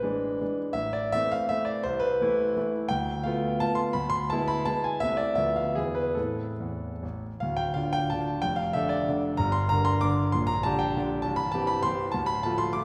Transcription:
Already playing: A1 B4
0.02 E3 G#3 D4
0.41 E3 G#3 D4
0.73 A1 E5
0.93 D5
1.12 E3 A3 C4 E5
1.32 F5
1.49 E3 A3 C4 E5
1.65 D5
1.83 C2 C5
2.00 B4
2.21 E3 A3 E4
2.57 E3 A3 E4
2.89 D2 G5
3.23 A3 B3 F4 F5
3.60 A3 B3 F4 A5
3.75 C6
3.93 D2 B5
4.10 C6
4.30 G#3 B3 E4 A5
4.48 B5
4.65 G#3 B3 E4 A5
4.84 G#5
5.00 C2 A3 C4 E4 E5
5.17 D5
5.35 D2 F3 B3 A4 E5
5.56 F5
5.75 E2 E3 B3 E4 G#4
5.95 B4
6.15 A2 C4 E4 A4
6.60 E2
7.03 A1
7.40 D1 D2 F5
7.57 G5
7.74 D3 D4 F4 F5
7.93 G5
8.10 D3 D4 F4 A5
8.42 F1 F2 G5
8.56 F5
8.73 D3 D4 A4 E5
8.89 D5
9.09 D3 D4 A4
9.37 G1 G2 A#5
9.52 C6
9.69 D3 D4 A#4 A#5
9.85 C6
10.01 D3 D4 A#4 D6
10.32 A#0 A#1 C6
10.47 A#5
10.63 D3 D4 G4 A5
10.79 G5
10.97 D3 D4 G4
11.22 C1 C2 A5
11.36 B5
11.52 E3 C4 G4 A5
11.67 B5
11.83 E3 C4 G4 C6
12.12 D1 D2 A5
12.26 B5
12.43 F3 A3 F4 A5
12.58 C6
12.73 F3 A3 F4 D6

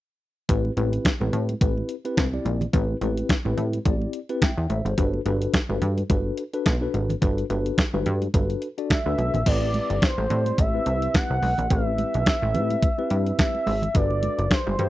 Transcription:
0.49 A1 C4 E4 G4 B4, kick, closed hi-hat, muted conga, low conga
0.65 muted conga
0.77 A1 C4 E4 G4 B4, closed hi-hat, high conga
0.93 closed hi-hat
1.05 kick, snare, closed hi-hat
1.20 A1 C4 E4 G4 B4, muted conga, high conga
1.33 A2, closed hi-hat, low conga
1.49 closed hi-hat, high conga
1.61 A1 C4 E4 G4 B4, kick, closed hi-hat, muted conga, high conga
1.77 muted conga
1.89 closed hi-hat
2.05 C4 E4 G4 B4, closed hi-hat
2.17 C2, kick, snare, closed hi-hat, muted conga, high conga
2.33 C4 E4 G4 D5, muted conga
2.45 A#1, closed hi-hat, high conga
2.61 closed hi-hat, low conga
2.73 A1 C4 E4 G4 B4, kick, closed hi-hat, low conga
3.01 A1 C4 E4 G4 B4, closed hi-hat, high conga
3.17 closed hi-hat
3.29 kick, snare, closed hi-hat
3.45 A1 C4 E4 G4 B4, muted conga, high conga
3.57 A2, closed hi-hat, low conga
3.73 closed hi-hat, high conga
3.85 A1 C4 E4 G4 D5, kick, closed hi-hat, muted conga, high conga
4.02 muted conga
4.13 closed hi-hat
4.29 C4 E4 G4 B4, closed hi-hat
4.42 E5 G5, kick, snare, closed hi-hat, muted conga, high conga
4.57 E2, muted conga
4.70 A1 C5 E5, closed hi-hat, high conga
4.85 G#1 A4 C5, closed hi-hat, low conga
4.98 G1 D4 F#4 A4 B4, kick, closed hi-hat, muted conga, low conga
5.14 muted conga
5.26 G1 D4 F#4 A4 B4, closed hi-hat, high conga
5.42 closed hi-hat
5.54 kick, snare, closed hi-hat, muted conga
5.69 G1 D4 F#4 A4 B4, muted conga, high conga
5.82 G2, closed hi-hat, low conga
5.98 closed hi-hat, high conga
6.10 G1 D4 F#4 A4 B4, kick, closed hi-hat, muted conga, high conga
6.38 closed hi-hat
6.53 D4 F#4 A4 B4, closed hi-hat
6.66 B1, kick, snare, closed hi-hat, high conga
6.81 D4 F#4 A4 B4
6.94 G#1, closed hi-hat, high conga
7.10 closed hi-hat, low conga
7.22 G1 D4 F#4 A4 B4, kick, closed hi-hat, muted conga, low conga
7.38 closed hi-hat
7.50 G1 D4 F#4 A4 B4, closed hi-hat, high conga
7.66 closed hi-hat
7.78 kick, snare, closed hi-hat, muted conga
7.93 G1 D4 F#4 A4 B4, muted conga, high conga
8.06 G2, closed hi-hat, low conga
8.22 closed hi-hat, high conga
8.34 G1 D4 F#4 A4 B4, kick, closed hi-hat, muted conga, high conga
8.50 closed hi-hat
8.62 closed hi-hat
8.78 D4 F#4 A4 D5, closed hi-hat
8.90 E5, kick, snare, closed hi-hat, high conga
9.06 D2 D4 F#4 A4 B4
9.18 B1, closed hi-hat, high conga
9.34 A#1, closed hi-hat, low conga
9.46 A1 C4 E4 G4 B4 D5, kick, closed hi-hat, crash, muted conga, low conga
9.74 closed hi-hat, high conga
9.90 G1, closed hi-hat
10.02 C5, kick, snare, closed hi-hat, muted conga
10.18 A1, muted conga, high conga
10.30 A2 C4 E4 G4 D5, closed hi-hat, low conga
10.46 closed hi-hat, high conga
10.58 A1 E5, kick, closed hi-hat, muted conga, high conga
10.74 C4 E4 G4 B4
10.86 C2, closed hi-hat
11.02 closed hi-hat
11.14 F#5, kick, snare, closed hi-hat, muted conga, high conga
11.30 C2
11.42 B1, open hi-hat, high conga
11.58 A#1, closed hi-hat, low conga
11.70 A1 C4 E4 G4 A#4 E5, kick, closed hi-hat, muted conga, low conga
11.78 B4
11.98 closed hi-hat, high conga
12.14 B1, closed hi-hat
12.26 kick, snare, closed hi-hat, muted conga
12.42 A1, muted conga, high conga
12.54 A2 C4 E4 G4 B4, closed hi-hat, low conga
12.70 closed hi-hat, high conga
12.82 kick, closed hi-hat, high conga
12.98 C4 E4 G4 B4, muted conga
13.10 G2, closed hi-hat
13.26 closed hi-hat
13.39 E5, kick, snare, closed hi-hat, high conga
13.55 muted conga
13.67 G#1, open hi-hat, high conga
13.82 closed hi-hat, low conga
13.94 G1 D4 F#4 A4 B4 D5, kick, closed hi-hat, muted conga, low conga
14.11 muted conga
14.23 closed hi-hat, high conga
14.39 F#1, closed hi-hat
14.51 C5, kick, snare, closed hi-hat
14.67 G1, muted conga, high conga
14.79 G2 D4 F#4 A4 B4, closed hi-hat, low conga

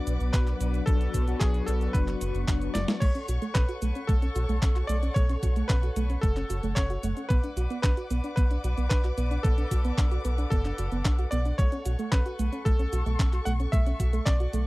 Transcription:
Already playing: F#3 B3 D4 F#4 B4 D5 F#5 D6
0.07 B1, closed hi-hat, cabasa
0.20 B1, closed hi-hat, cabasa
0.33 B1 B4, kick, clap, closed hi-hat, cabasa
0.47 clap, closed hi-hat, cabasa
0.61 B1, closed hi-hat, cabasa
0.74 closed hi-hat, cabasa
0.86 B1 F#3 B3 D4 F#4 A4 C#6, kick, closed hi-hat, cabasa
1.01 closed hi-hat, cabasa
1.14 B1, kick, closed hi-hat, cabasa
1.27 F#3 B3 D4 F#4, closed hi-hat, cabasa
1.39 B1 G#4, kick, clap, closed hi-hat, cabasa
1.54 closed hi-hat, cabasa
1.66 B1 A4, closed hi-hat, cabasa
1.81 closed hi-hat, cabasa
1.93 F#1 B4, kick, closed hi-hat, cabasa
2.08 clap, closed hi-hat, cabasa
2.21 F#1, closed hi-hat, cabasa
2.34 F#1, closed hi-hat, cabasa
2.48 F#1 F#3 B3 D4 F#4, kick, clap, closed hi-hat, cabasa
2.62 closed hi-hat, cabasa
2.74 F#1 D5, snare, closed hi-hat, cabasa
2.88 snare, closed hi-hat, cabasa
3.00 B1 A3 A4 C#5 F#5, kick, closed hi-hat, crash, cabasa
3.15 C#4, closed hi-hat, cabasa
3.28 B1 F#4, closed hi-hat, cabasa
3.42 A3, closed hi-hat, cabasa
3.54 B1 C#4 B4, kick, clap, closed hi-hat, cabasa
3.69 F#4, closed hi-hat, cabasa
3.82 B1 A3, closed hi-hat, cabasa
3.95 C#4, closed hi-hat, cabasa
4.07 B1 A3 A4, kick, closed hi-hat, cabasa
4.22 C#4, closed hi-hat, cabasa
4.35 B1 F#4, closed hi-hat, cabasa
4.49 B1 A3, closed hi-hat, cabasa
4.62 B1 C#4, kick, clap, closed hi-hat, cabasa
4.76 F#4, clap, closed hi-hat, cabasa
4.87 B1 A3 D5, closed hi-hat, cabasa
5.03 C#4, closed hi-hat, cabasa
5.14 B1 A3 C#5, kick, closed hi-hat, cabasa
5.29 C#4, closed hi-hat, cabasa
5.43 B1 F#4, kick, closed hi-hat, cabasa
5.56 A3, closed hi-hat, cabasa
5.68 B1 C#4 B4, kick, clap, closed hi-hat, cabasa
5.83 F#4, closed hi-hat, cabasa
5.96 B1 A3, closed hi-hat, cabasa
6.10 C#4, closed hi-hat, cabasa
6.21 F#1 A3 A4, kick, closed hi-hat, cabasa
6.37 C#4, clap, closed hi-hat, cabasa
6.50 F#1 F#4, closed hi-hat, cabasa
6.63 F#1 A3, closed hi-hat, cabasa
6.75 F#1 C#4 C#5, kick, clap, closed hi-hat, cabasa
6.90 F#4, closed hi-hat, cabasa
7.03 F#1 A3, closed hi-hat, cabasa
7.17 C#4, closed hi-hat, cabasa
7.29 B1 B3 B4 D5 D6, kick, closed hi-hat, cabasa
7.44 D4, closed hi-hat, cabasa
7.57 B1 F#4, closed hi-hat, cabasa
7.70 B3, closed hi-hat, cabasa
7.82 B1 D4 B4, kick, clap, closed hi-hat, cabasa
7.97 F#4, closed hi-hat, cabasa
8.10 B1 B3, closed hi-hat, cabasa
8.24 D4, closed hi-hat, cabasa
8.36 B1 B3 B4, kick, closed hi-hat, cabasa
8.51 D4, closed hi-hat, cabasa
8.64 B1 F#4, closed hi-hat, cabasa
8.78 B1 B3, closed hi-hat, cabasa
8.89 B1 D4 B4, kick, clap, closed hi-hat, cabasa
9.04 F#4, clap, closed hi-hat, cabasa
9.18 B1 B3, closed hi-hat, cabasa
9.31 D4, closed hi-hat, cabasa
9.43 B1 B3 A4, kick, closed hi-hat, cabasa
9.58 D4, closed hi-hat, cabasa
9.71 B1 F#4, kick, closed hi-hat, cabasa
9.85 B3, closed hi-hat, cabasa
9.98 B1 D4, kick, clap, closed hi-hat, cabasa
10.11 F#4, closed hi-hat, cabasa
10.25 B1 B3, closed hi-hat, cabasa
10.38 D4, closed hi-hat, cabasa
10.50 F#1 B3 A4, kick, closed hi-hat, cabasa
10.65 D4, clap, closed hi-hat, cabasa
10.78 F#1 F#4, closed hi-hat, cabasa
10.92 F#1 B3, closed hi-hat, cabasa
11.05 B1 D4, kick, clap, closed hi-hat, cabasa
11.19 F#4, closed hi-hat, cabasa
11.31 B1 B3 D5, closed hi-hat, cabasa
11.45 D4, closed hi-hat, cabasa
11.58 B1 A3 A4 C#5 C#6, kick, closed hi-hat, cabasa
11.72 C#4, closed hi-hat, cabasa
11.86 B1 F#4, closed hi-hat, cabasa
11.99 A3, closed hi-hat, cabasa
12.12 B1 C#4 B4, kick, clap, closed hi-hat, cabasa
12.26 F#4, closed hi-hat, cabasa
12.39 B1 A3, closed hi-hat, cabasa
12.52 C#4, closed hi-hat, cabasa
12.65 B1 A3 A4, kick, closed hi-hat, cabasa
12.79 C#4, closed hi-hat, cabasa
12.93 B1 F#4, closed hi-hat, cabasa
13.06 B1 A3, closed hi-hat, cabasa
13.19 B1 C#4, kick, clap, closed hi-hat, cabasa
13.33 F#4, clap, closed hi-hat, cabasa
13.45 B1 A3 F#5, closed hi-hat, cabasa
13.60 C#4, closed hi-hat, cabasa
13.72 B1 A3 E5, kick, closed hi-hat, cabasa
13.86 C#4, closed hi-hat, cabasa
14.00 B1 F#4, kick, closed hi-hat, cabasa
14.13 A3, closed hi-hat, cabasa
14.26 B1 C#4 D5, kick, clap, closed hi-hat, cabasa
14.40 F#4, closed hi-hat, cabasa
14.53 B1 A3, closed hi-hat, cabasa

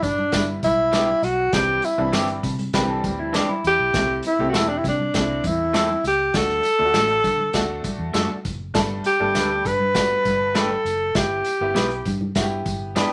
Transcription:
Already playing: D4
0.03 G2 D4, kick, closed hi-hat, tambourine, high conga, low conga
0.18 high conga
0.32 G1 G3 B3 E4, kick, snare, closed hi-hat, tambourine, muted conga
0.63 B1 E4, kick, closed hi-hat, tambourine, muted conga, high conga
0.92 G3 B3 D4 G4, snare, closed hi-hat, tambourine, muted conga
1.09 high conga
1.22 B1 F#4, closed hi-hat, tambourine, muted conga
1.53 C2 E3 G3 C4 D4 G4, kick, snare, closed hi-hat, tambourine, muted conga, low conga
1.82 E4, closed hi-hat, tambourine, muted conga
1.98 C2 E3 G3 C4 D4 E4
2.13 G1 E3 C4 D4 G4, snare, closed hi-hat, tambourine, muted conga
2.27 closed hi-hat
2.43 C3, kick, closed hi-hat, tambourine, high conga, low conga
2.59 closed hi-hat, high conga
2.73 C2 D#3 G3 C4 D4 G4 B4, kick, snare, closed hi-hat, tambourine
2.81 E3
2.89 A4
3.04 D2 G4, kick, closed hi-hat, tambourine, muted conga, high conga
3.19 E4
3.33 E3 C4 D4 G4, snare, closed hi-hat, tambourine, muted conga
3.49 E4, high conga
3.64 E2 G4, closed hi-hat, tambourine
3.79 B1
3.93 C2 A3 C4 E4, kick, snare, closed hi-hat, tambourine, muted conga, low conga
4.23 closed hi-hat, tambourine, muted conga
4.27 E4
4.39 C2 A3 C4 G4
4.49 A3 F#4
4.54 E1 C4 E4 A4, snare, closed hi-hat, tambourine, muted conga
4.59 E4
4.69 D4
4.78 E4
4.84 C3, kick, closed hi-hat, tambourine, muted conga, high conga, low conga
4.88 D4
4.99 high conga
5.14 C2 A3 C4 E4, kick, snare, closed hi-hat, tambourine
5.44 E2 E4, kick, closed hi-hat, tambourine, high conga
5.73 A3 C4 E4 A4, snare, closed hi-hat, tambourine
5.89 high conga
6.04 C#2 G4, closed hi-hat, tambourine, muted conga
6.34 D2 A3 D4 F#4 A4, kick, snare, closed hi-hat, tambourine, muted conga, low conga
6.49 snare, high conga
6.63 closed hi-hat, tambourine, muted conga
6.78 D2 A3 D4 F4
6.85 F#4
6.93 A1 A3 D4 F#4 A4, snare, closed hi-hat, tambourine, muted conga
7.08 closed hi-hat
7.24 D3, kick, closed hi-hat, tambourine, muted conga, high conga, low conga
7.39 high conga
7.53 D2 A3 D4 F#4, kick, snare, closed hi-hat, tambourine
7.84 muted fingered electric bass stroke, kick, closed hi-hat, tambourine, high conga
7.98 E2
8.14 F#2 A3 D4 F#4 A4, snare, closed hi-hat, tambourine
8.30 high conga
8.45 F#1, kick, closed hi-hat, tambourine, muted conga
8.74 G1 G3 A3 B3 D4 A4, kick, snare, closed hi-hat, tambourine, muted conga, low conga
9.04 G4, closed hi-hat, tambourine, muted conga
9.20 G1 G3 A3 B3 D4 A4
9.35 D2 A3 D4 G4 B4, snare, closed hi-hat, tambourine
9.65 G2 B4, kick, closed hi-hat, tambourine, muted conga, high conga, low conga
9.80 high conga
9.94 G3 A3 B3 D4 F#4, kick, snare, closed hi-hat, tambourine
10.25 G1, kick, closed hi-hat, tambourine, muted conga, high conga
10.55 A3 D4 G4 A4 B4, snare, closed hi-hat, tambourine
10.70 high conga
10.85 F#1, closed hi-hat, tambourine, muted conga
11.15 G1 B3 E4 G4, kick, snare, closed hi-hat, tambourine, muted conga, low conga
11.44 closed hi-hat, tambourine
11.61 G1 B3 E4 G4
11.74 B1 B3 E4 G4 B4, snare, closed hi-hat, tambourine
11.90 closed hi-hat
12.05 G2, kick, closed hi-hat, tambourine, muted conga, high conga, low conga
12.21 high conga
12.35 G2 B3 E4 F#4, kick, snare, closed hi-hat, tambourine
12.42 G4
12.66 G1, kick, closed hi-hat, tambourine, high conga
12.96 B3 D4 E4 G4 B4, snare, closed hi-hat, tambourine

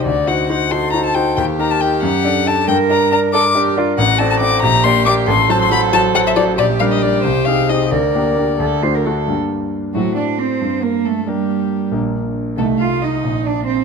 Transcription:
0.05 D2 F#4 D5
0.27 D#4 F#4 C5 F#5
0.49 D#4 F#4 C5 F#5
0.71 D#4 F#4 A4 C5 C6
0.92 D#4 F#4 C5 A#5
1.05 A5
1.15 D#4 F#4 C5 G5
1.36 D#2 G4 G5
1.59 D#4 G4 A#4 A#5
1.71 A5
1.80 D#4 G4 A#4 G5
2.02 F#2 F#5
2.24 D4 A4 D5
2.46 D4 A4 D5 A5
2.68 G2 A#4 G5
2.89 D4 A#4 D5 A#5
3.11 D4 A#4 D5 A#5
3.33 D4 A4 A#4 D5 D6
3.54 D4 G4 A#4 D5
3.77 D4 F4 A#4 D5
3.98 A1 F#4 F#5
4.18 C4 A4 D5 A5
4.30 A5
4.40 C4 A4 D5 D6
4.62 A#1 G4 A#5
4.84 A#3 G4 D5 C6
5.05 A#3 G4 D5 D6
5.27 A1 A4 C6
5.49 F#3 F#4 C5 A5
5.61 C6
5.71 F#3 F#4 C5 B5
5.92 F#3 F#4 C5 A5
6.14 F#3 F#4 C5 F#5
6.27 E5
6.36 F#3 F#4 C5 D5
6.58 A#1 G4 D5
6.79 G3 D4 A#4 F5
6.92 D#5
7.02 G3 D4 A#4 D5
7.24 C2 C5
7.45 C4 D#4 G#4 F5
7.69 C4 D#4 G#4 D#5
7.91 D2 A#4 D5
8.15 A#3 D4 G4
8.37 A#3 D4 G4
8.60 D2 A4
8.82 A3 D4 F#4 C5
8.94 A#4
9.05 A3 D4 F#4 A4
9.28 G2 A#3 D4 G4
9.94 A2 F#3 A3 C4 F#4
10.16 D4 D5
10.38 C4 C5
10.61 G2
10.82 A#3 A#4
11.05 A3 A4
11.27 G3 A#3 D4 G4 A#4
11.92 A#1 A#3 D4 A#4
12.57 C2 A3 D#4 A4
12.79 F4 F5
13.02 D#4 D#5
13.24 A#1
13.46 D4 D5
13.67 C4 C5

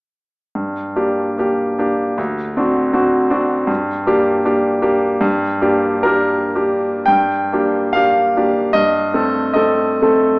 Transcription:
0.55 G2
0.96 A#3 D4 G4
1.38 A#3 D4 G4
1.78 A#3 D4 G4
2.18 D2
2.57 C4 D4 F#4
2.93 C4 D4 F#4
3.30 C4 D4 F#4
3.67 G2
4.07 A#3 D4 G4
4.45 A#3 D4 G4
4.82 A#3 D4 G4
5.21 G2
5.62 A#3 D4 G4
6.03 A#3 D4 G4 A#4
6.55 A#3 D4 G4
7.06 G2 G5
7.53 A#3 D4 G4
7.93 A#3 D4 G4 F5
8.36 A#3 D4 G4
8.73 G2 D#5
9.14 A3 C4 A4
9.54 A3 C4 A4 D#5
10.02 A3 C4 A4

